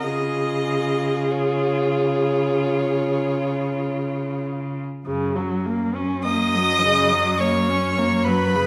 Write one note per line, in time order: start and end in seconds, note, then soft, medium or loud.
0.02 4.81 C#3 medium
0.02 4.85 F4 medium
0.02 4.46 G#4 medium
0.02 1.33 D#5 medium
1.31 4.45 C#5 medium
5.06 8.67 F#2 medium
5.06 5.38 C#3 medium
5.36 5.67 F#3 medium
5.66 5.97 A#3 medium
5.95 6.27 C#4 medium
6.24 6.57 A#3 medium
6.24 7.42 D#5 loud
6.24 7.39 D#6 loud
6.55 6.86 F#3 medium
6.84 7.14 C#3 medium
7.13 7.41 F#3 medium
7.38 7.71 A#3 medium
7.38 8.26 C#5 medium
7.38 8.25 C#6 medium
7.69 8.00 C#4 medium
7.99 8.29 A#3 medium
8.24 8.57 F#3 medium
8.24 8.67 B4 medium
8.24 8.67 B5 medium
8.56 8.67 C#3 medium